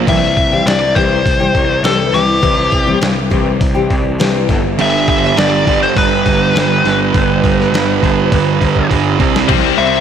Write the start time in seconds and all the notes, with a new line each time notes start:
0.07 C2 E3 G3 C4 G4 E5, kick, open hi-hat, crash
0.23 muted steel-string acoustic guitar stroke
0.37 kick, open hi-hat
0.52 E3 G3 C4 G4
0.66 C2 D5, snare, open hi-hat
0.95 C2 E3 G3 C4 G4 C5, kick, open hi-hat
1.26 C2, kick, open hi-hat
1.40 E3 G3 C4 G4
1.55 C2, kick, open hi-hat
1.69 muted steel-string acoustic guitar stroke
1.83 C2 E3 G3 C4 G4 A4, snare, open hi-hat
2.13 C2 E3 G3 C4 G4, snare, open hi-hat
2.28 muted steel-string acoustic guitar stroke
2.42 C2 E3 G3 C4 G4, kick, open hi-hat
2.57 muted steel-string acoustic guitar stroke
2.72 kick, open hi-hat
2.86 E3 G3 C4 G4
3.02 C2, snare, open hi-hat
3.30 C2 E3 G3 C4 G4, kick, open hi-hat
3.61 C2, kick, open hi-hat
3.74 E3 G3 C4 G4
3.90 C2, kick, open hi-hat
4.04 muted steel-string acoustic guitar stroke
4.19 C2 E3 G3 C4 G4, snare, open hi-hat
4.48 G1 G3 B3 D4 A4, kick, snare, open hi-hat
4.63 muted steel-string acoustic guitar stroke
4.78 G1 G2 D3 G3 E5, crash
5.08 E5, kick, open hi-hat
5.25 snare
5.37 G1 G2 D3 G3 D5, snare, open hi-hat
5.67 G1 G2 D3 G3, kick, open hi-hat
5.83 C5
5.96 G1 G2 D3 G3 B4, kick, open hi-hat
6.26 G1, kick, open hi-hat
6.55 G1 G2 D3 G3, snare, open hi-hat
6.85 G1 G2 D3 G3, snare, open hi-hat
7.14 G1 G2 D3 G3, kick, open hi-hat
7.44 kick, open hi-hat
7.60 snare
7.73 G1 G2 D3 G3, snare, open hi-hat
8.01 G1 G2 D3 G3, kick, open hi-hat
8.31 G1 G2 D3 G3, kick, open hi-hat
8.61 G1, kick, open hi-hat
8.76 kick
8.90 G1 G2 D3 G3, kick, open hi-hat
9.19 C2 C3 G3 C4, kick, open hi-hat
9.36 snare
9.48 C2 C3 G3 C4, kick, open hi-hat, crash
9.77 C2 C3 G3 C4 E5